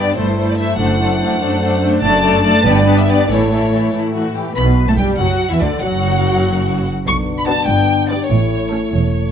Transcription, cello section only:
0, 0, Header, 1, 2, 480
1, 0, Start_track
1, 0, Key_signature, 2, "major"
1, 0, Tempo, 417827
1, 898, Time_signature, 6, 3, 24, 8
1, 10703, End_track
2, 0, Start_track
2, 0, Title_t, "Cello section"
2, 0, Program_c, 0, 48
2, 179, Note_on_c, 0, 43, 46
2, 811, Note_off_c, 0, 43, 0
2, 904, Note_on_c, 0, 42, 50
2, 1532, Note_off_c, 0, 42, 0
2, 1611, Note_on_c, 0, 42, 52
2, 2240, Note_off_c, 0, 42, 0
2, 2323, Note_on_c, 0, 42, 64
2, 2953, Note_off_c, 0, 42, 0
2, 3033, Note_on_c, 0, 43, 64
2, 3683, Note_off_c, 0, 43, 0
2, 3777, Note_on_c, 0, 45, 52
2, 4424, Note_off_c, 0, 45, 0
2, 4511, Note_on_c, 0, 45, 44
2, 5158, Note_off_c, 0, 45, 0
2, 5236, Note_on_c, 0, 47, 62
2, 5579, Note_off_c, 0, 47, 0
2, 5609, Note_on_c, 0, 45, 37
2, 5657, Note_off_c, 0, 45, 0
2, 5727, Note_on_c, 0, 43, 47
2, 5819, Note_off_c, 0, 43, 0
2, 5962, Note_on_c, 0, 42, 43
2, 6054, Note_off_c, 0, 42, 0
2, 6315, Note_on_c, 0, 40, 51
2, 6438, Note_on_c, 0, 38, 42
2, 6439, Note_off_c, 0, 40, 0
2, 6530, Note_off_c, 0, 38, 0
2, 6677, Note_on_c, 0, 42, 53
2, 7849, Note_off_c, 0, 42, 0
2, 8107, Note_on_c, 0, 47, 67
2, 8671, Note_off_c, 0, 47, 0
2, 8818, Note_on_c, 0, 43, 61
2, 9385, Note_off_c, 0, 43, 0
2, 9524, Note_on_c, 0, 45, 56
2, 10101, Note_off_c, 0, 45, 0
2, 10235, Note_on_c, 0, 40, 45
2, 10703, Note_off_c, 0, 40, 0
2, 10703, End_track
0, 0, End_of_file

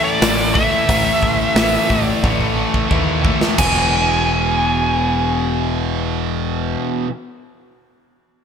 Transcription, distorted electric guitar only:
0, 0, Header, 1, 2, 480
1, 0, Start_track
1, 0, Key_signature, 4, "major"
1, 0, Tempo, 672646
1, 634, Time_signature, 4, 2, 24, 8
1, 6026, End_track
2, 0, Start_track
2, 0, Title_t, "Distorted electric guitar"
2, 0, Program_c, 0, 30
2, 0, Note_on_c, 0, 45, 94
2, 0, Note_on_c, 0, 52, 106
2, 0, Note_on_c, 0, 57, 114
2, 132, Note_off_c, 0, 45, 0
2, 140, Note_on_c, 0, 45, 78
2, 143, Note_off_c, 0, 57, 0
2, 149, Note_off_c, 0, 52, 0
2, 151, Note_on_c, 0, 52, 88
2, 152, Note_on_c, 0, 57, 92
2, 373, Note_off_c, 0, 45, 0
2, 381, Note_off_c, 0, 57, 0
2, 382, Note_on_c, 0, 45, 83
2, 386, Note_off_c, 0, 52, 0
2, 389, Note_on_c, 0, 52, 90
2, 390, Note_on_c, 0, 57, 94
2, 603, Note_off_c, 0, 45, 0
2, 608, Note_off_c, 0, 52, 0
2, 610, Note_off_c, 0, 57, 0
2, 612, Note_on_c, 0, 45, 97
2, 616, Note_on_c, 0, 52, 102
2, 619, Note_on_c, 0, 57, 118
2, 1093, Note_off_c, 0, 45, 0
2, 1098, Note_off_c, 0, 52, 0
2, 1102, Note_on_c, 0, 45, 94
2, 1106, Note_off_c, 0, 57, 0
2, 1107, Note_on_c, 0, 52, 98
2, 1115, Note_on_c, 0, 57, 114
2, 1337, Note_off_c, 0, 45, 0
2, 1345, Note_off_c, 0, 52, 0
2, 1346, Note_off_c, 0, 57, 0
2, 1346, Note_on_c, 0, 45, 75
2, 1354, Note_on_c, 0, 52, 87
2, 1354, Note_on_c, 0, 57, 89
2, 1574, Note_off_c, 0, 45, 0
2, 1581, Note_off_c, 0, 52, 0
2, 1582, Note_off_c, 0, 57, 0
2, 1582, Note_on_c, 0, 45, 96
2, 1589, Note_on_c, 0, 52, 101
2, 1591, Note_on_c, 0, 57, 110
2, 2042, Note_off_c, 0, 45, 0
2, 2048, Note_off_c, 0, 52, 0
2, 2050, Note_on_c, 0, 45, 83
2, 2053, Note_off_c, 0, 57, 0
2, 2057, Note_on_c, 0, 52, 86
2, 2062, Note_on_c, 0, 57, 92
2, 2291, Note_off_c, 0, 45, 0
2, 2299, Note_off_c, 0, 52, 0
2, 2300, Note_on_c, 0, 45, 78
2, 2301, Note_off_c, 0, 57, 0
2, 2307, Note_on_c, 0, 52, 91
2, 2309, Note_on_c, 0, 57, 91
2, 2534, Note_off_c, 0, 45, 0
2, 2537, Note_off_c, 0, 52, 0
2, 2538, Note_off_c, 0, 57, 0
2, 2541, Note_on_c, 0, 40, 82
2, 2554, Note_on_c, 0, 47, 102
2, 2569, Note_on_c, 0, 52, 99
2, 5038, Note_off_c, 0, 40, 0
2, 5051, Note_off_c, 0, 47, 0
2, 5067, Note_off_c, 0, 52, 0
2, 6026, End_track
0, 0, End_of_file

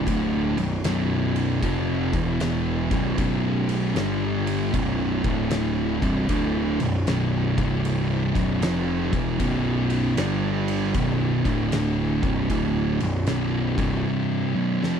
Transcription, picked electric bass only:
0, 0, Header, 1, 2, 480
1, 0, Start_track
1, 0, Tempo, 776197
1, 41, Time_signature, 4, 2, 24, 8
1, 9275, End_track
2, 0, Start_track
2, 0, Title_t, "Picked electric bass"
2, 0, Program_c, 0, 34
2, 45, Note_on_c, 0, 26, 100
2, 336, Note_off_c, 0, 26, 0
2, 356, Note_on_c, 0, 23, 81
2, 511, Note_off_c, 0, 23, 0
2, 520, Note_on_c, 0, 23, 78
2, 979, Note_off_c, 0, 23, 0
2, 1007, Note_on_c, 0, 29, 96
2, 1299, Note_off_c, 0, 29, 0
2, 1320, Note_on_c, 0, 28, 104
2, 1777, Note_off_c, 0, 28, 0
2, 1803, Note_on_c, 0, 23, 101
2, 1957, Note_off_c, 0, 23, 0
2, 1967, Note_on_c, 0, 23, 91
2, 2424, Note_off_c, 0, 23, 0
2, 2444, Note_on_c, 0, 31, 79
2, 2903, Note_off_c, 0, 31, 0
2, 2933, Note_on_c, 0, 23, 94
2, 3224, Note_off_c, 0, 23, 0
2, 3246, Note_on_c, 0, 26, 112
2, 3701, Note_off_c, 0, 26, 0
2, 3728, Note_on_c, 0, 24, 101
2, 3881, Note_off_c, 0, 24, 0
2, 3890, Note_on_c, 0, 26, 85
2, 4183, Note_off_c, 0, 26, 0
2, 4211, Note_on_c, 0, 23, 74
2, 4363, Note_off_c, 0, 23, 0
2, 4372, Note_on_c, 0, 23, 85
2, 4664, Note_off_c, 0, 23, 0
2, 4686, Note_on_c, 0, 24, 113
2, 5141, Note_off_c, 0, 24, 0
2, 5167, Note_on_c, 0, 23, 97
2, 5321, Note_off_c, 0, 23, 0
2, 5341, Note_on_c, 0, 29, 98
2, 5629, Note_off_c, 0, 29, 0
2, 5644, Note_on_c, 0, 28, 101
2, 5799, Note_off_c, 0, 28, 0
2, 5813, Note_on_c, 0, 23, 96
2, 6267, Note_off_c, 0, 23, 0
2, 6299, Note_on_c, 0, 31, 76
2, 6750, Note_off_c, 0, 31, 0
2, 6770, Note_on_c, 0, 23, 98
2, 7062, Note_off_c, 0, 23, 0
2, 7084, Note_on_c, 0, 26, 106
2, 7538, Note_off_c, 0, 26, 0
2, 7564, Note_on_c, 0, 24, 92
2, 7717, Note_off_c, 0, 24, 0
2, 7729, Note_on_c, 0, 26, 101
2, 8019, Note_off_c, 0, 26, 0
2, 8046, Note_on_c, 0, 23, 75
2, 8197, Note_off_c, 0, 23, 0
2, 8215, Note_on_c, 0, 23, 75
2, 8502, Note_off_c, 0, 23, 0
2, 8519, Note_on_c, 0, 24, 100
2, 8673, Note_off_c, 0, 24, 0
2, 9275, End_track
0, 0, End_of_file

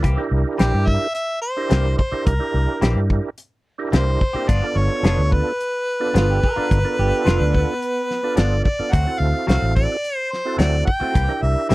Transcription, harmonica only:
0, 0, Header, 1, 2, 480
1, 0, Start_track
1, 0, Tempo, 555556
1, 28, Time_signature, 4, 2, 24, 8
1, 10151, End_track
2, 0, Start_track
2, 0, Title_t, "Harmonica"
2, 0, Program_c, 0, 22
2, 510, Note_on_c, 0, 67, 87
2, 751, Note_on_c, 0, 76, 101
2, 764, Note_off_c, 0, 67, 0
2, 983, Note_off_c, 0, 76, 0
2, 988, Note_on_c, 0, 76, 104
2, 1212, Note_off_c, 0, 76, 0
2, 1225, Note_on_c, 0, 72, 96
2, 1674, Note_off_c, 0, 72, 0
2, 1709, Note_on_c, 0, 72, 83
2, 1952, Note_on_c, 0, 70, 96
2, 1965, Note_off_c, 0, 72, 0
2, 2431, Note_off_c, 0, 70, 0
2, 3394, Note_on_c, 0, 72, 82
2, 3873, Note_on_c, 0, 74, 92
2, 3886, Note_off_c, 0, 72, 0
2, 4121, Note_on_c, 0, 73, 91
2, 4134, Note_off_c, 0, 74, 0
2, 4596, Note_on_c, 0, 71, 102
2, 4609, Note_off_c, 0, 73, 0
2, 7228, Note_on_c, 0, 74, 88
2, 7240, Note_off_c, 0, 71, 0
2, 7458, Note_off_c, 0, 74, 0
2, 7463, Note_on_c, 0, 74, 90
2, 7706, Note_on_c, 0, 78, 110
2, 7719, Note_off_c, 0, 74, 0
2, 7936, Note_on_c, 0, 77, 94
2, 7949, Note_off_c, 0, 78, 0
2, 8183, Note_off_c, 0, 77, 0
2, 8187, Note_on_c, 0, 77, 97
2, 8411, Note_off_c, 0, 77, 0
2, 8430, Note_on_c, 0, 74, 94
2, 8775, Note_off_c, 0, 74, 0
2, 8775, Note_on_c, 0, 72, 94
2, 8909, Note_off_c, 0, 72, 0
2, 8909, Note_on_c, 0, 72, 95
2, 9137, Note_off_c, 0, 72, 0
2, 9142, Note_on_c, 0, 74, 94
2, 9368, Note_off_c, 0, 74, 0
2, 9380, Note_on_c, 0, 79, 98
2, 9865, Note_on_c, 0, 76, 100
2, 9878, Note_off_c, 0, 79, 0
2, 10096, Note_off_c, 0, 76, 0
2, 10101, Note_on_c, 0, 76, 99
2, 10151, Note_off_c, 0, 76, 0
2, 10151, End_track
0, 0, End_of_file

